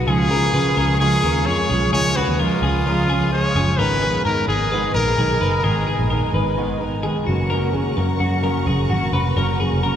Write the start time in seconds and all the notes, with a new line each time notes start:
Already playing: F5
0.07 C#2 C#3 F3 G#3 C#4 G#4 C#6
0.29 F3 G#3 C#4 A#4
0.53 C#3 F3 G#3 C#4 B4
0.76 C#2 F3 G#3 C#4 A#4
1.00 C#3 F3 G#3 C#4 G#4
1.23 D#2 F3 G#3 C#4 A#4
1.46 F2 C#3 F3 G#3 C#4 G#4 C#5
1.69 B1 F3 G#3 C#4 G#4
1.92 C#2 C#3 F3 G#3 C#4 G#4 C#5 D#6
2.15 G#3 C#4 F#4 B4
2.28 D#2
2.39 C#3 F3 G#3 C#4 F4 A#4
2.62 C#2 F3 G#3 C#4 G#4
2.86 C#3 F3 G#3 C#4 A#4
3.09 F3 G#3 C#4 G#4
3.31 C#3 F3 G#3 C#4 C#5
3.55 F#1 F3 G#3 C#4 G#4
3.78 G#1 G#2 D#3 G#3 B3 D#4 G#4 A#4 B4 D#5 G#5
4.01 G#3 B3 D#4 G#4
4.25 G#2 D#3 G#3 B3 D#4 A#4
4.48 G#1 G#3 B3 D#4 G#4
4.72 G#2 D#3 G#3 B3 D#4 B4
4.94 A#1 G#3 B3 D#4 A#4
5.18 B1 D#3 G#3 B3 D#4 G#4
5.41 F#1 G#3 B3 D#4 B4
5.64 G#1 G#2 D#3 G#3 B3 D#4 G#4 A#4
5.87 G#3 B3 D#4 G#4
5.99 A#1
6.10 D#3 G#3 B3 D#4 A#4
6.33 G#1 G#3 B3 D#4 B4
6.56 G#2 D#3 G#3 B3 D#4
6.80 G#3 B3 D#4 A#4
7.03 D#3 G#3 B3 D#4 G#4
7.27 F#1 F#3 A#3 C#4 F#4 F#5 A#5 C#6
7.50 F#2 C#3 F#3 A#3 C#4 A#4
7.73 F#3 A#3 C#4 G#4
7.97 F#2 C#3 F#3 A#3 C#4 A#4
8.20 F#2 F#3 A#3 C#4 F#4
8.42 F#2 C#3 F#3 A#3 C#4 A#4
8.66 F#1 F#3 A#3 C#4 G#4
8.89 G#1 C#3 F#3 A#3 C#4 F#4
9.12 F1 F#3 A#3 C#4 B4
9.36 F#1 F#2 C#3 F#3 A#3 C#4 A#4
9.59 F#3 A#3 C#4 G#4
9.71 F1
9.82 C#3 F#3 A#3 C#4 A#4